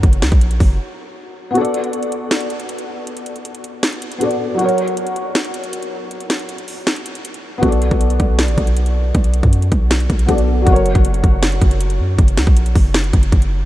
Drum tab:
HH |xxxxxxo---------|xxxxxxx-xxxxxx--|xxxxxxx-xxxxxx--|xxxxxxx-xxxxxx--|
SD |--o-------------|--------o-------|--------o-------|--------o-------|
BD |o--o--o---------|----------------|----------------|----------------|

HH |xxxxxxo-xxxxxx--|xxxxxxx-xxxxxx--|xxxxxxx-xxxxxx--|xxxxxxx-xxxxxx--|
SD |--o-----o-------|--------o-------|--------o-------|--------o-------|
BD |----------------|o--o--o---o-----|o--o--o---o-o---|o--o--o---o-----|

HH |xxxxxxo-xxxxxx--|
SD |--o-----o-------|
BD |o--o--o---o-o---|